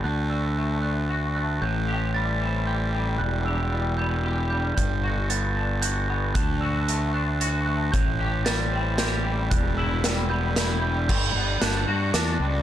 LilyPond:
<<
  \new Staff \with { instrumentName = "Glockenspiel" } { \time 3/4 \key g \major \tempo 4 = 114 fis'''8 e'''4 fis'''4 fis'''8 | g'''4 a'''4 g'''4 | fis'''8 e'''4 g'''4 g'''8 | g'''4 a'''4 g'''4 |
fis'''8 e'''4 fis'''4 fis'''8 | g'''4 a'''4 g'''4 | fis'''8 e'''4 g'''4 g'''8 | g'''4 fis'''4 d'''4 | }
  \new Staff \with { instrumentName = "Clean electric guitar" } { \time 3/4 \key g \major d8 fis'8 a8 d'8 fis'8 a8 | a,8 g'8 g8 c'8 g'8 g8 | e,8 g'8 g8 b8 g'8 g8 | g8 fis'8 b8 d'8 fis'8 b8 |
d8 fis'8 a8 d'8 fis'8 a8 | a,8 g'8 g8 c'8 g'8 g8 | e,8 e'8 g8 b8 e'8 g8 | g8 b8 d'8 fis'8 d'8 g8 | }
  \new Staff \with { instrumentName = "Fingered electric bass" } { \clef bass \time 3/4 \key g \major d,2. | a,,2. | e,,2. | g,,2. |
d,2. | a,,2. | e,,2. | g,,8 g,,8 g,,8 g,8 e,8 cis,8 | }
  \new DrumStaff \with { instrumentName = "Drums" } \drummode { \time 3/4 r4 r4 r4 | r4 r4 r4 | r4 r4 r4 | <hh bd>4 hh4 hh4 |
<hh bd>4 hh4 hh4 | <hh bd>4 <hh sn>4 <hh sn>4 | <hh bd>4 <hh sn>4 <hh sn>4 | <cymc bd>4 <hh sn>4 <hh sn>4 | }
>>